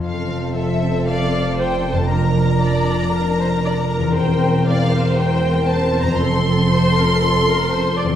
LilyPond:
<<
  \new Staff \with { instrumentName = "Violin section" } { \time 4/4 \key f \major \tempo 4 = 117 f''4 e''4 f''4 \tuplet 3/2 { g''4 a''8 } | bes''1 | g''4 f''4 g''4 \tuplet 3/2 { a''4 bes''8 } | c'''1 | }
  \new Staff \with { instrumentName = "Viola section" } { \time 4/4 \key f \major r2 d''4 c''4 | bes'4 d''4 bes'8 c''8 d''8 bes'8 | c''4 d''8 c''4. c''4 | a'4 c''8 bes'8 a'8 bes'8 c''8 d''8 | }
  \new Staff \with { instrumentName = "Violin section" } { \time 4/4 \key f \major << { a'1 | bes'1~ | bes'1 | a'1 | } \\ { c'1 | d'1 | c'1~ | c'1 | } >> }
  \new Staff \with { instrumentName = "Harp" } { \time 4/4 \key f \major <f, c' a' c''>1 | <f, bes bes' d''>1 | <e, c' bes' c''>1 | <f, c' a' c''>1 | }
  \new Staff \with { instrumentName = "Cello section" } { \clef bass \time 4/4 \key f \major f,1~ | f,1 | e,1 | f,1 | }
  \new Staff \with { instrumentName = "Double bass section" } { \clef bass \time 4/4 \key f \major f,,1~ | f,,1 | e,,1 | f,,1 | }
>>